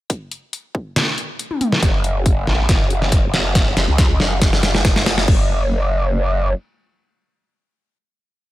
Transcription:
0.10 kick, closed hi-hat
0.32 closed hi-hat
0.53 closed hi-hat
0.75 kick
0.96 snare, closed hi-hat
1.18 closed hi-hat
1.39 closed hi-hat
1.51 high tom
1.61 closed hi-hat, mid tom
1.72 snare
1.83 wobble bass F#1, kick, snare, closed hi-hat
2.04 closed hi-hat
2.26 kick, closed hi-hat
2.47 wobble bass A1, snare
2.69 wobble bass F#1, kick, snare, closed hi-hat
2.90 closed hi-hat
3.02 snare
3.12 wobble bass F#1, kick, closed hi-hat
3.34 snare, closed hi-hat
3.55 kick, snare, closed hi-hat
3.77 wobble bass F#1, snare, closed hi-hat
3.88 wobble bass C#2
3.98 kick, snare, closed hi-hat
4.20 wobble bass F#1, snare
4.42 wobble bass F#1, kick, snare, closed hi-hat
4.53 snare
4.63 snare, closed hi-hat
4.75 snare
4.85 wobble bass F#1, kick, snare, closed hi-hat
4.96 snare
5.06 snare, closed hi-hat
5.18 snare
5.28 wobble bass F#1, kick, crash

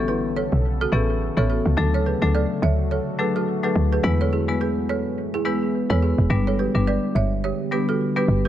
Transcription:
Already playing: log drum bass A1, ambient pad C#3 B3 A4, marimba E3 B3 C#4 A4
0.08 balafon E4 B4
0.36 balafon A4 C#5
0.52 log drum bass B1
0.81 balafon F#4 A4
0.92 log drum bass A1, marimba E3 B3 C#4 A4, balafon G#4 B4
1.37 log drum bass A1, marimba E3 B3 C#4 A4, balafon A4 C#5
1.50 balafon F#4 A4
1.65 log drum bass C#2
1.77 log drum bass D2, ambient pad D3 A3 F#4, marimba F#3 A3 D4 A4
1.94 balafon A4 C#5
2.06 balafon G#4 B4
2.22 log drum bass D2, marimba F#3 A3 D4 A4
2.35 balafon A4 D5
2.62 log drum bass D2, balafon C#5 E5
2.91 balafon A4 C#5
3.19 marimba F#3 A3 D4 A4, balafon G#4 B4
3.36 balafon F#4 A4
3.63 marimba F#3 A3 D4 A4, balafon G#4 B4
3.75 log drum bass D2
3.93 balafon G#4 B4
4.03 log drum bass E2, ambient pad E3 B3 G#4, marimba G#3 B3 E4 B4
4.21 balafon A4 C#5
4.33 balafon E4 G#4
4.48 marimba G#3 B3 E4 B4
4.61 balafon G#4 B4
4.89 balafon A4 C#5
5.05 log drum bass F#2
5.34 balafon E4 G#4
5.45 log drum bass E2, marimba G#3 B3 E4 B4, balafon G#4 B4
5.90 log drum bass E2, marimba G#3 B3 E4 B4, balafon A4 C#5
6.03 balafon E4 G#4
6.18 log drum bass E1
6.30 log drum bass G1, ambient pad D3 B3 G4, marimba G3 B3 D4 B4
6.47 balafon A4 C#5
6.59 balafon G4 B4
6.75 log drum bass G1, marimba G3 B3 D4 B4
6.87 balafon B4 D5
7.15 log drum bass G1, balafon C#5 E5
7.44 balafon G4 C#5
7.71 marimba G3 B3 D4 B4, balafon G4 B4
7.89 balafon F#4 A4
8.16 marimba G3 B3 D4 B4, balafon G4 B4
8.28 log drum bass G1

